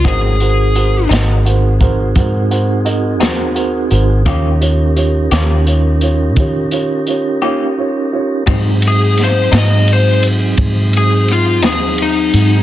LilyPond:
<<
  \new Staff \with { instrumentName = "Lead electric guitar" } { \time 12/8 \key aes \mixolydian \tempo 4. = 57 aes'4. r1 r8 | r1. | r8 aes'8 c''8 ees''8 c''8 r4 aes'8 f'8 aes'8 ees'4 | }
  \new Staff \with { instrumentName = "Upright piano" } { \time 12/8 \key aes \mixolydian <ges' bes' c''>8 <ges' bes' c''>8 <ges' bes' c''>8 <ges' bes' ees''>8 <ges' bes' c''>8 <ges' bes' c''>8 <ges' bes' c''>8 <ges' bes' c''>8 <ges' bes' ees''>8 <ges' bes' c''>8 <ges' bes' c''>8 <ges' bes' c''>8 | <f' g' des''>8 <f' g' des''>8 <f' g' des''>8 <f' g'>8 <f' g' des''>8 <f' g' des''>8 <f' g' des''>8 <f' g' des''>8 <f' g' des''>8 <f' g' des''>8 <f' g' des''>8 <f' g' des''>8 | r1. | }
  \new Staff \with { instrumentName = "Tonewheel organ" } { \time 12/8 \key aes \mixolydian <a des' fes' g''>8 <c' ees' ges' aes'>1~ <c' ees' ges' aes'>4. | <des' ees' g' bes'>1. | <ges c' ees' aes'>1. | }
  \new Staff \with { instrumentName = "Clean electric guitar" } { \time 12/8 \key aes \mixolydian <aes, ges c' ees'>8 r4 <aes, ges c' ees'>8 r2 r8 <aes, ges c' ees'>8 r4 | <ees bes des' g'>8 r4 <ees bes des' g'>8 r2 r8 <ees bes des' g'>8 r4 | <aes, ges c' ees'>8 r4 <aes, ges c' ees'>8 r2 r8 <aes, ges c' ees'>8 r4 | }
  \new Staff \with { instrumentName = "Fingered electric bass" } { \clef bass \time 12/8 \key aes \mixolydian aes,,4. aes,,4. aes,4. ees,4 aes,,8 | ees,4. ees,4. ees4. r4. | aes,4. aes,4. aes,4. ees,4 aes,8 | }
  \new DrumStaff \with { instrumentName = "Drums" } \drummode { \time 12/8 <hh bd>8 hh8 hh8 <hh sn>8 hh8 <hh bd>8 <hh bd>8 hh8 hh8 <hh sn>8 hh8 hh8 | <hh bd>8 hh8 hh8 <hh sn>8 hh8 hh8 <hh bd>8 hh8 hh8 r4. | <bd cymr>8 cymr8 <cymr sn>8 <cymr sn>8 cymr8 cymr8 <bd cymr>8 cymr8 cymr8 <cymr sn>8 cymr8 cymr8 | }
>>